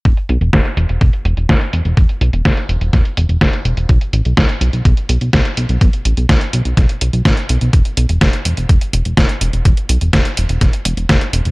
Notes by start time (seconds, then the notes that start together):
0.05 E1, kick, closed hi-hat
0.17 closed hi-hat
0.29 B1, closed hi-hat
0.41 E1, closed hi-hat
0.53 E1, kick, snare, closed hi-hat
0.65 closed hi-hat
0.77 E1, closed hi-hat
0.89 E1, closed hi-hat
1.01 E1, kick, closed hi-hat
1.13 closed hi-hat
1.25 E1, closed hi-hat
1.37 E1, closed hi-hat
1.49 E1, kick, snare, closed hi-hat
1.61 closed hi-hat
1.73 E1, closed hi-hat
1.85 E1, closed hi-hat
1.97 E1, kick, closed hi-hat
2.09 closed hi-hat
2.21 B1, closed hi-hat
2.33 E1, closed hi-hat
2.45 E1, kick, snare, closed hi-hat
2.57 closed hi-hat
2.69 E1, closed hi-hat
2.81 E1, closed hi-hat
2.93 E1, kick, snare, closed hi-hat
3.05 closed hi-hat
3.17 E1, closed hi-hat
3.29 E1, closed hi-hat
3.41 E1, kick, snare, closed hi-hat
3.53 closed hi-hat
3.65 E1, closed hi-hat
3.77 E1, closed hi-hat
3.89 B1, kick, closed hi-hat
4.01 closed hi-hat
4.13 A1, closed hi-hat
4.25 B1, closed hi-hat
4.37 B1, kick, snare, closed hi-hat
4.49 closed hi-hat
4.61 B1, closed hi-hat
4.73 B1, closed hi-hat
4.85 B1, kick, closed hi-hat
4.97 closed hi-hat
5.09 B1, closed hi-hat
5.21 B1, closed hi-hat
5.33 B1, kick, snare, closed hi-hat
5.45 closed hi-hat
5.57 B1, closed hi-hat
5.69 B1, closed hi-hat
5.81 B1, kick, closed hi-hat
5.93 closed hi-hat
6.05 A1, closed hi-hat
6.17 B1, closed hi-hat
6.29 B1, kick, snare, closed hi-hat
6.41 closed hi-hat
6.53 B1, closed hi-hat
6.65 B1, closed hi-hat
6.77 B1, kick, snare, closed hi-hat
6.89 closed hi-hat
7.01 B1, closed hi-hat
7.13 B1, closed hi-hat
7.25 A1, kick, snare, closed hi-hat
7.37 closed hi-hat
7.49 B1, closed hi-hat
7.61 B1, closed hi-hat
7.73 E1, kick, closed hi-hat
7.85 closed hi-hat
7.97 B1, closed hi-hat
8.09 E1, closed hi-hat
8.21 E1, kick, snare, closed hi-hat
8.33 closed hi-hat
8.45 E1, closed hi-hat
8.57 E1, closed hi-hat
8.69 E1, kick, closed hi-hat
8.81 closed hi-hat
8.93 E1, closed hi-hat
9.05 E1, closed hi-hat
9.17 E1, kick, snare, closed hi-hat
9.29 closed hi-hat
9.41 E1, closed hi-hat
9.53 E1, closed hi-hat
9.65 E1, kick, closed hi-hat
9.77 closed hi-hat
9.89 B1, closed hi-hat
10.01 E1, closed hi-hat
10.13 E1, kick, snare, closed hi-hat
10.25 closed hi-hat
10.37 E1, closed hi-hat
10.49 E1, closed hi-hat
10.61 E1, kick, snare, closed hi-hat
10.73 closed hi-hat
10.85 E1, closed hi-hat
10.97 E1, closed hi-hat
11.09 E1, kick, snare, closed hi-hat
11.21 closed hi-hat
11.33 E1, closed hi-hat
11.45 E1, closed hi-hat